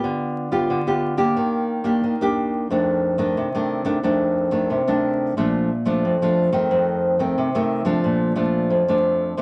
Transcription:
nylon-string guitar
Already playing: B3 F4 G4
0.04 D3
0.52 B3 F4 G4
0.70 D3
0.87 B3 F4 G4
1.17 A#3 D4 G4
1.37 D#3
1.84 A#3 D4 G4
2.04 D#3
2.21 A#3 D4 G4
2.70 F2 D#3 A3 D4
3.18 D#3 A3 D4
3.37 C3
3.55 D#3 A3 D4
3.85 D#3 A3 D4
4.03 F2 D#3 A3 D4
4.51 D#3 A3 D4
4.70 C3
4.87 D#3 A3 D4
5.37 A#2 F3 A3 D4
5.85 F3 A3 D4
6.05 F2
6.22 F3 A3 D4
6.53 D#3 A3 C4
6.71 F2
7.19 D#3 A3 C4
7.38 C3
7.55 D#3 A3 C4
7.85 F3 A3 D4
8.04 A#2
8.36 F3 A3 D4
8.70 F2
8.88 F3 A3 D4
9.37 C3 F3 A#3 D4

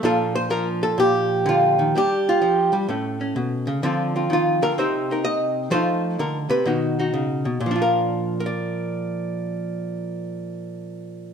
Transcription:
hollow-body jazz guitar
0.03 A#2 F3 D4 F4 A4
0.35 C5
0.50 F3 A#4
0.83 A4
0.98 A#2 G4
1.46 D3 F4
1.79 D#3
1.95 G3 D4 G4
2.29 F4
2.42 F3
2.73 G3
2.89 A2 A3 C#4
3.21 C#4
3.36 B2
3.67 C#3
3.83 D3 F3 C4 F4
4.16 C4 F4
4.30 D#3 F4
4.62 D3 A#4
4.78 C3 C4 D#4 A#4 C5
5.11 D#4 A#4
5.25 D#5
5.71 F3 A3 D#4 F4 C5
6.19 D3 A#4
6.50 C3 B4
6.66 B2 D#3 D#4 F#4
6.99 D#4 F#4
7.14 C#3
7.45 B2
7.60 A#2
7.66 F3
7.71 D4
7.76 F4
7.82 A#4
8.40 A#4
8.46 D5

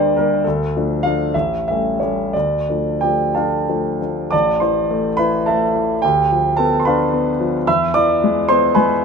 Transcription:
grand piano
Already playing: D2 G3 A#3 D4 C5 D5 E5
0.16 G3 A#3 D4 A#4
0.44 D2 A4
0.76 F3 A3 D4
1.03 F3 A3 D4 F5
1.34 A1 E5
1.68 G3 A3 C#4 E5
2.00 G3 A3 C#4 C#5
2.33 D2 D5
2.69 F3 A3 D4
3.01 F3 A3 D4 G4 G5
3.35 F3 A3 D4 A4 F5 A5
3.69 F3 A3 D4
4.01 F3 A3 D4
4.31 A1 D5 A5 D6
4.60 E3 C5 A5 C6
4.91 A3
5.17 E4 B4 B5
5.46 A3 A4 E5 A5
5.75 E3
6.02 D2 G4 G5
6.32 F3
6.57 B3 A4 A5
6.80 C6
6.85 D4 B4 F5 B5
7.13 B3
7.40 F3
7.67 E2 E5 B5 E6
7.94 E3 D5 D6
8.24 G#3
8.49 B3 C5 C6
8.75 G#3 B4 G#5 B5

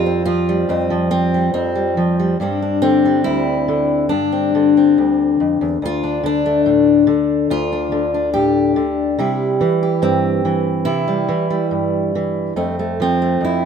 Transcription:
steel-string acoustic guitar
Already playing: F2 F3 G3 F4
0.06 C4
0.25 F3 F4
0.49 G3
0.69 F2 C4
0.90 F3
1.11 C4
1.34 G3
1.54 F2 C4
1.75 G3
1.97 F3
2.20 G3
2.40 G2 G3 C4 D4
2.62 D4
2.82 D3 C4
3.06 G3
3.24 D2 E4
3.68 D3
4.09 G2 D4
4.32 C4
4.55 D3
4.77 C4
4.98 D2
5.40 F2
5.61 E2
5.82 D2 F4
6.03 D4
6.23 D3 D4
6.46 A3
6.66 A2
7.07 D3
7.50 D2 F4
7.72 D4
7.92 D3
8.14 D4
8.34 A2 G4
8.76 D3
9.19 C3 G3 E4 G4
9.61 E3
9.83 G4
10.02 G2 C4
10.45 E3
10.85 C3 E4
11.08 G3
11.29 E3
11.50 G3
11.71 G2
12.15 E3
12.56 F2 A3 C4
12.79 A3
13.00 F3 C4
13.22 A3
13.41 F2 E4

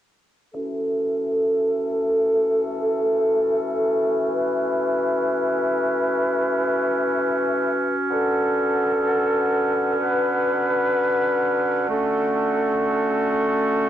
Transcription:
woodwind section
0.55 E3 A3 C#4 F#4 A4
4.33 B4
8.11 D3 B3 A4
10.00 B4
11.89 A3 C#4 F#4 A4

